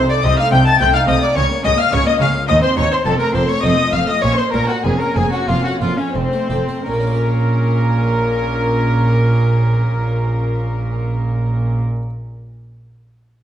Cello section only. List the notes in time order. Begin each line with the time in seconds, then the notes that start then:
0.24 C3
0.52 C3
0.80 C3
1.08 C3
1.36 C#3
1.64 C#3
1.92 C#3
2.20 C#3
2.49 D#2
2.77 D#2
3.06 F2
3.34 F2
3.64 F2
3.93 F2
4.23 A#2
4.54 A#2
4.85 F2
5.16 F2
5.48 F2
5.82 F2
6.16 F2
6.51 F2
6.86 A#2